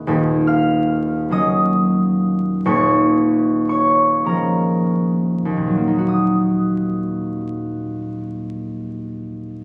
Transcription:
0.00 1.30 A#3 medium
0.00 0.34 D#4 medium
0.07 2.64 D#1 loud
0.07 2.65 D#2 loud
0.47 4.38 F5 loud
0.47 1.91 F6 loud
1.29 2.71 F#3 medium
1.29 5.21 A#3 medium
1.29 4.25 C#4 medium
1.29 5.22 D#5 medium
1.29 5.22 D#6 loud
2.65 6.11 D#1 loud
2.65 5.44 D#2 loud
2.65 3.70 C#5 loud
2.65 3.68 C#6 loud
3.69 6.12 C#5 medium
3.69 6.11 C#6 loud
4.24 6.12 F3 medium
4.24 6.13 G#3 medium
4.24 6.12 C#4 medium
4.24 8.16 A#5 loud
4.29 8.19 A#4 medium
5.45 9.64 D#2 medium
5.57 9.64 A#2 medium
5.67 9.64 F#3 medium
5.77 9.64 A#3 medium
5.87 9.64 D#4 medium
5.98 9.64 F#4 medium
6.08 9.64 D#6 medium

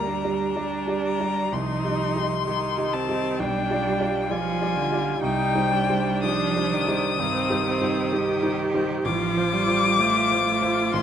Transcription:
0.00 1.55 D2 medium
0.00 0.25 G3 soft
0.00 0.53 G3 medium
0.00 0.25 G4 soft
0.00 0.25 D5 medium
0.00 1.04 A#5 medium
0.07 1.54 D4 medium
0.25 0.53 G3 medium
0.25 0.53 G4 soft
0.25 0.53 D5 medium
0.55 1.53 G3 medium
0.55 0.85 G3 soft
0.55 0.85 G4 soft
0.55 0.85 D5 medium
0.87 1.17 G3 soft
0.87 1.17 G4 soft
0.87 1.17 D5 medium
1.04 1.54 A#5 medium
1.20 1.49 G3 soft
1.20 1.49 G4 soft
1.20 1.49 D5 medium
1.51 1.83 C2 medium
1.51 2.45 F3 medium
1.51 2.46 D#4 medium
1.51 2.95 C6 loud
1.84 2.13 G3 soft
1.84 2.13 G4 soft
1.84 2.13 D#5 medium
2.16 2.44 G3 medium
2.16 2.44 G4 medium
2.16 2.44 D#5 medium
2.45 3.40 D#3 medium
2.45 2.75 G3 medium
2.45 2.96 D#4 medium
2.45 2.75 G4 medium
2.45 2.75 D#5 medium
2.78 3.06 G3 medium
2.78 3.06 G4 medium
2.78 3.06 D#5 medium
2.93 3.41 C4 medium
2.93 3.41 A5 loud
3.09 3.36 G3 medium
3.09 3.36 G4 soft
3.09 3.37 D#5 medium
3.38 3.69 B1 medium
3.38 4.31 G3 medium
3.38 4.32 D4 medium
3.38 4.32 G5 medium
3.71 3.97 G3 medium
3.71 3.98 F4 medium
3.71 3.98 D5 medium
4.00 4.27 G3 medium
4.00 4.28 F4 medium
4.00 4.28 D5 medium
4.30 4.78 F3 medium
4.30 4.58 G3 soft
4.30 5.21 F4 medium
4.30 4.58 F4 medium
4.30 4.58 D5 medium
4.30 5.21 G#5 loud
4.62 4.88 G3 medium
4.62 4.89 F4 medium
4.62 4.89 D5 medium
4.76 5.21 D3 medium
4.92 5.19 G3 medium
4.92 5.19 F4 medium
4.92 5.20 D5 medium
5.21 5.53 C2 medium
5.21 6.25 G3 medium
5.21 5.73 D#4 medium
5.21 6.21 G5 loud
5.55 5.86 G3 medium
5.55 5.86 D#4 medium
5.55 5.86 C5 medium
5.72 7.20 D4 medium
5.90 6.20 G3 medium
5.90 6.20 D#4 medium
5.90 6.20 C5 medium
6.22 6.74 F3 medium
6.22 6.53 G3 medium
6.22 6.53 D#4 medium
6.22 6.53 C5 medium
6.22 8.55 D#6 loud
6.56 6.84 G3 medium
6.56 6.85 D#4 medium
6.56 6.85 C5 medium
6.72 7.19 D#3 medium
6.88 7.16 G3 medium
6.88 7.16 D#4 medium
6.88 7.16 C5 medium
7.19 7.49 G2 medium
7.19 9.02 D#3 medium
7.19 7.66 C4 medium
7.50 7.78 G3 medium
7.50 7.79 D#4 medium
7.50 7.79 C5 medium
7.67 8.14 C4 medium
7.81 8.09 G3 medium
7.81 8.10 D#4 medium
7.81 8.10 C5 medium
8.12 8.40 G3 medium
8.12 8.41 D#4 medium
8.12 9.08 G4 medium
8.12 8.41 C5 medium
8.42 8.71 G3 medium
8.42 8.71 D#4 medium
8.42 8.71 C5 medium
8.74 9.02 G3 medium
8.74 9.02 D#4 medium
8.74 9.03 C5 medium
9.05 9.36 A1 medium
9.05 9.54 F3 medium
9.05 9.99 F4 medium
9.05 10.95 D6 loud
9.37 9.65 F3 medium
9.37 9.65 F4 medium
9.37 9.65 C5 medium
9.53 10.01 G3 medium
9.68 9.96 F3 medium
9.68 9.96 F4 medium
9.68 9.96 C5 medium
9.99 10.27 F3 medium
9.99 10.45 A3 medium
9.99 10.27 F4 medium
9.99 11.03 F4 medium
9.99 10.27 C5 medium
10.30 10.59 F3 medium
10.30 10.59 F4 medium
10.30 10.59 C5 medium
10.45 11.03 A3 medium
10.62 10.90 F3 medium
10.62 10.90 F4 medium
10.62 10.91 C5 medium
10.93 11.03 A1 medium
10.93 11.03 C6 loud

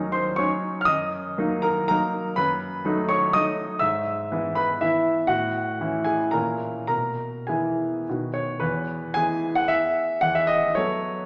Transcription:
0.00 0.40 D#2 medium
0.00 0.35 F#3 medium
0.00 0.35 C#4 medium
0.00 0.35 D#4 medium
0.00 0.41 A#4 medium
0.00 0.13 A#5 medium
0.12 0.37 C5 medium
0.12 0.38 C6 medium
0.36 0.83 F#3 soft
0.36 0.84 C#4 soft
0.36 0.84 D#4 medium
0.36 0.78 C#5 medium
0.36 0.80 C#6 medium
0.81 0.88 F6 medium
0.85 1.37 F#2 medium
0.85 1.60 D#5 medium
0.85 1.63 D#6 loud
1.38 1.85 F#3 medium
1.38 1.85 A#3 medium
1.38 1.86 D#4 medium
1.62 1.87 A#4 medium
1.62 1.87 A#5 medium
1.88 2.33 F#3 soft
1.88 2.33 A#3 soft
1.88 2.33 D#4 medium
1.88 2.33 A#4 medium
1.88 2.36 A#5 loud
2.36 2.84 F#2 medium
2.36 3.07 B4 medium
2.36 3.10 B5 loud
2.85 3.31 F#3 medium
2.85 3.31 A3 medium
2.85 3.31 D#4 medium
3.09 3.33 C#5 medium
3.09 3.34 C#6 medium
3.33 3.78 F#3 soft
3.33 3.78 A3 soft
3.33 3.78 D#4 medium
3.33 3.78 D#5 medium
3.33 3.81 D#6 loud
3.79 4.29 G#2 medium
3.79 4.52 E5 medium
3.79 4.56 E6 medium
4.32 4.78 E3 medium
4.32 4.78 B3 medium
4.32 4.79 E4 medium
4.55 4.80 B4 medium
4.55 4.81 B5 medium
4.81 5.25 E3 soft
4.81 5.26 B3 soft
4.81 5.26 E4 medium
4.81 5.29 E5 medium
5.27 5.77 A2 medium
5.27 6.02 F#4 medium
5.27 6.05 F#5 medium
5.81 6.30 E3 medium
5.81 6.30 C#4 soft
5.81 6.31 E4 medium
6.04 6.32 G#4 medium
6.04 6.33 G#5 medium
6.31 6.88 A#2 medium
6.31 6.85 E3 soft
6.31 6.85 C#4 soft
6.31 6.86 E4 soft
6.31 6.85 A#4 medium
6.31 6.86 A#5 medium
6.87 7.45 B2 soft
6.87 7.43 A#4 medium
6.87 7.47 A#5 medium
7.47 8.03 E3 soft
7.47 8.03 B3 soft
7.47 8.03 E4 soft
7.47 8.03 G#4 soft
7.47 8.06 G#5 medium
8.09 8.61 B2 medium
8.09 8.59 D#3 soft
8.09 8.59 B3 soft
8.09 8.59 F#4 soft
8.34 8.61 C#5 medium
8.60 9.14 E2 medium
8.60 9.15 B4 medium
9.14 10.18 E3 medium
9.14 10.19 B3 soft
9.14 10.19 G#4 medium
9.14 9.56 G#5 loud
9.55 9.70 F#5 loud
9.68 10.21 E5 loud
10.21 10.73 E2 medium
10.21 10.35 F#5 loud
10.35 10.48 E5 medium
10.47 10.74 D#5 loud
10.75 11.26 F#3 soft
10.75 11.26 B3 soft
10.75 11.26 A4 medium
10.75 11.26 C#5 medium

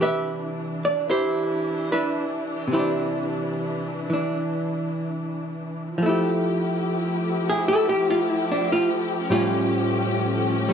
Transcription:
0.00 2.66 C3 soft
0.00 2.71 E3 soft
0.00 5.97 E3 medium
0.00 5.97 D4 medium
0.00 1.09 G4 soft
0.00 1.61 B4 medium
0.00 0.79 E5 medium
0.85 1.09 D5 medium
1.10 1.92 E4 soft
1.10 2.69 G4 soft
1.10 1.92 C5 medium
1.92 2.78 D4 soft
1.92 2.72 E4 soft
1.92 2.75 B4 medium
2.68 5.98 C3 soft
2.72 4.09 E3 soft
2.72 5.15 E4 soft
2.72 5.15 G4 soft
2.72 5.15 C5 medium
2.79 4.12 D4 soft
4.10 5.98 E3 soft
4.10 6.02 D4 soft
5.97 10.73 F3 medium
5.97 9.27 F3 soft
5.97 9.24 A3 medium
5.97 9.24 E4 medium
5.97 10.73 G4 medium
6.03 9.30 A3 soft
6.03 8.10 E4 medium
6.09 7.49 G4 soft
7.50 7.63 G#4 medium
7.68 7.89 A4 medium
7.89 8.18 G4 medium
8.10 8.30 F4 medium
8.30 8.45 E4 medium
8.52 8.72 D4 medium
8.72 8.90 F4 medium
9.29 10.73 A2 soft
9.29 10.67 G3 soft
9.29 10.73 A3 medium
9.29 10.73 C#4 medium
9.29 10.69 C#4 soft
9.29 10.70 F4 medium
10.69 10.73 G3 soft
10.69 10.73 C#4 soft

